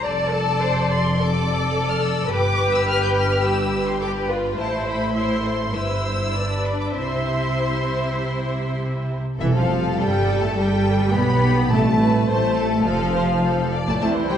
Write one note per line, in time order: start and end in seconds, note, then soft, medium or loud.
0.03 2.26 F1 medium
0.03 2.27 F2 medium
0.03 1.13 A4 medium
0.03 1.13 D5 medium
0.03 0.33 D5 medium
0.03 0.89 A5 medium
0.32 0.61 A4 medium
0.61 0.89 C5 medium
0.89 1.17 D5 soft
0.89 1.17 C6 medium
1.17 2.28 A4 medium
1.17 2.31 A4 medium
1.17 2.28 D5 medium
1.17 1.88 D6 medium
1.89 2.03 F6 medium
2.02 2.30 E6 medium
2.30 4.58 G1 medium
2.30 4.58 G2 medium
2.30 3.99 G4 medium
2.30 3.44 B4 medium
2.30 3.99 B4 medium
2.30 2.72 D6 medium
2.74 2.88 E6 medium
2.87 3.01 F6 medium
3.02 3.08 G6 medium
3.16 3.44 F6 medium
3.44 3.99 G4 medium
3.44 3.87 E6 medium
3.88 4.01 C6 medium
4.00 4.28 G4 medium
4.00 4.09 A4 soft
4.00 4.57 B4 soft
4.00 4.09 D6 medium
4.29 4.58 F4 soft
4.29 4.37 B4 soft
4.57 5.74 A1 soft
4.57 5.74 A2 medium
4.57 5.15 E4 soft
4.57 5.14 C5 medium
4.57 5.15 C5 soft
4.57 4.85 A5 medium
4.87 5.15 B5 medium
5.15 5.73 E4 soft
5.15 5.73 C5 soft
5.15 5.44 E5 soft
5.15 5.73 C6 medium
5.45 5.74 A4 soft
5.73 6.94 G1 soft
5.73 6.94 G2 soft
5.73 6.32 E4 soft
5.73 6.03 B4 soft
5.73 6.32 C5 soft
5.73 6.63 E6 medium
6.03 6.33 C5 soft
6.33 6.95 D4 soft
6.33 6.95 B4 soft
6.33 6.94 D5 soft
6.64 6.79 B5 soft
6.79 6.86 D6 soft
6.93 9.16 C2 soft
6.93 9.16 C3 soft
6.93 9.20 E4 soft
6.93 9.20 C5 soft
6.93 9.06 E5 soft
6.93 8.76 C6 medium
9.40 9.54 E1 medium
9.40 10.24 C3 medium
9.40 9.54 E3 medium
9.40 9.46 E3 medium
9.40 9.54 E3 medium
9.40 11.10 A4 medium
9.40 9.46 E5 medium
9.54 9.99 F1 medium
9.54 9.97 F3 soft
9.54 9.98 F3 soft
9.54 9.98 F3 medium
9.54 9.97 F5 medium
9.98 10.42 G1 medium
9.98 10.41 G3 medium
9.98 10.42 G3 medium
9.98 10.42 G5 medium
10.41 10.56 A1 soft
10.41 10.56 A3 medium
10.41 10.56 A3 soft
10.41 10.49 A3 medium
10.41 10.57 A5 medium
10.55 11.13 G1 medium
10.55 11.13 G3 medium
10.55 11.14 G3 medium
10.55 11.13 G5 medium
11.14 11.72 B1 medium
11.14 11.72 B3 medium
11.14 11.71 B3 medium
11.14 11.72 G4 soft
11.14 11.72 B5 medium
11.72 12.28 A1 medium
11.72 12.54 C3 medium
11.72 12.28 A3 medium
11.72 12.28 A3 soft
11.72 12.28 A3 medium
11.72 11.80 A4 medium
11.72 12.27 A5 medium
12.00 12.28 B4 medium
12.28 12.85 A1 medium
12.28 12.85 A3 medium
12.28 12.58 C5 medium
12.28 12.85 A5 medium
12.58 12.86 A4 medium
12.86 13.71 F1 medium
12.86 13.73 F3 medium
12.86 13.15 A4 medium
12.86 13.71 F5 medium
13.16 13.24 C5 medium
13.45 13.72 A4 medium
13.73 14.01 D5 medium
13.87 14.01 A1 medium
13.87 13.93 A3 medium
13.87 13.94 A3 medium
13.87 13.93 A5 medium
14.01 14.38 C2 medium
14.01 14.15 C3 medium
14.01 14.22 G3 medium
14.01 14.09 A3 medium
14.01 14.38 E4 medium
14.01 14.22 E4 medium
14.01 14.38 C5 medium
14.01 14.09 A5 medium
14.15 14.30 E3 medium
14.29 14.38 G3 soft
14.29 14.37 G5 medium